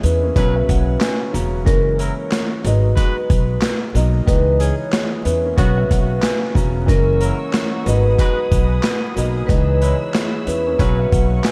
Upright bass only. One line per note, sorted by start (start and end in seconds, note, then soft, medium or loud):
0.04 0.30 E2 medium
0.36 0.62 B1 loud
0.69 0.95 B1 loud
1.34 1.67 E1 medium
1.67 2.08 F#1 loud
2.64 2.91 G#1 loud
3.30 3.56 B1 loud
3.95 4.21 B1 medium
4.28 4.69 C#2 loud
5.25 5.52 E2 medium
5.58 5.84 B1 loud
5.91 6.17 B1 medium
6.55 6.88 E1 loud
6.88 7.30 F#1 loud
7.86 8.13 G#1 loud
8.52 8.78 B1 loud
9.17 9.43 B1 medium
9.49 9.91 C#2 loud
10.47 10.73 E2 medium
10.79 11.06 B1 loud
11.12 11.39 B1 loud